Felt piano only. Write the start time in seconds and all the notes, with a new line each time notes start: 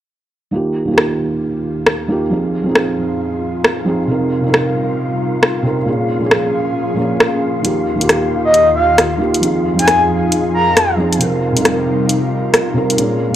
0.51 D#3 A#3 F4
0.55 G4
0.85 D#3 A#3
0.91 F4 G4
2.08 D#3 A#3 F4 G4
2.30 F3 C4 D#4 G#4
2.63 F3 C4
2.69 D#4 G#4
3.85 F3 C4 D#4 G#4
4.07 C3 C4 D#4 A#4
4.41 C3 C4
4.46 D#4 A#4
5.63 C3 C4 D#4
5.67 A#4
5.85 A#2 A#3 C#4 G#4
6.18 A#2 A#3
6.24 C#4 G#4
6.93 A#2 A#3
6.99 C#4 G#4
7.62 D#3 A#3 F4
7.66 G4
7.96 D#3 A#3
8.01 F4 G4
9.17 D#3 A#3 F4
9.21 G4
9.40 F3 C4 D#4
9.44 G#4
9.74 F3 C4
9.80 D#4 G#4
10.96 F3 C4 D#4 G#4
11.18 C3 C4 D#4 A#4
11.53 C3 C4
11.58 D#4 A#4
12.74 C3 C4 D#4 A#4
12.96 A#2 A#3 C#4 G#4
13.30 A#2